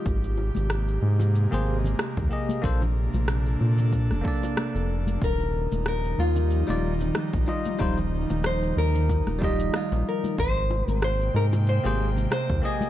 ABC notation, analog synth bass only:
X:1
M:4/4
L:1/16
Q:"Swing 16ths" 1/4=93
K:Eb
V:1 name="Analog synth bass" clef=bass
A,,,3 A,,,3 A,,3 A,,,3 z E,, z2 | B,,,3 B,,,3 B,,3 F,,, z3 F,,,3 | E,,,3 E,,,3 E,,3 E,,,3 z B,,, z2 | E,,,3 E,,,3 E,,3 E,,,3 z B,,, z2 |
A,,,3 A,,,3 A,,3 A,,,3 z E,, z2 |]